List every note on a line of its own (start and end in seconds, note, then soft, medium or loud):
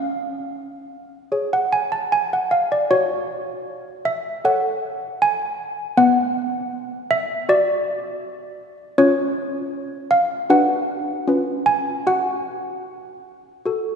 0.00 2.86 C#4 soft
0.00 1.48 F5 medium
1.32 2.86 G#4 soft
1.32 2.86 C#5 soft
1.53 1.72 F#5 medium
1.73 1.92 G#5 medium
1.92 2.12 A5 medium
2.12 2.32 G#5 medium
2.33 2.52 F#5 soft
2.51 2.71 F5 medium
2.72 2.91 D5 soft
2.91 5.94 F#4 soft
2.91 4.02 C#5 medium
4.05 4.43 E5 medium
4.45 5.94 A4 soft
4.45 5.95 C#5 soft
4.45 5.19 F#5 medium
5.22 5.95 G#5 medium
5.97 8.94 B3 medium
5.97 7.07 F#5 medium
7.11 7.47 E5 medium
7.49 8.94 F#4 soft
7.49 8.57 D5 medium
8.98 10.45 C#4 medium
8.98 10.45 F4 soft
8.98 10.07 C#5 medium
10.11 10.47 F5 medium
10.50 11.25 D4 medium
10.50 11.23 F#4 soft
10.50 11.23 B4 soft
10.50 11.63 F#5 medium
11.28 12.04 C#4 soft
11.28 12.02 F4 soft
11.28 12.03 B4 soft
11.66 12.04 G#5 medium
12.07 13.64 F#4 medium
12.07 13.96 F#5 medium
13.66 13.96 F#4 soft
13.66 13.96 A4 soft